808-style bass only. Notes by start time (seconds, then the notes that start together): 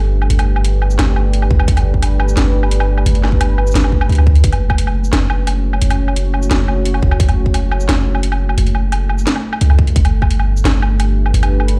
Already playing: G1
0.30 G1
0.99 G1
1.51 G1
1.68 G1
2.37 G1
3.06 G1
3.75 G1
4.09 D2
4.44 F#1
5.13 F#1
5.82 F#1
6.51 F#1
7.03 F#1
7.20 F#1
7.89 F#1
8.58 F#1
9.61 C#2
9.96 G1
10.65 G1
11.34 G1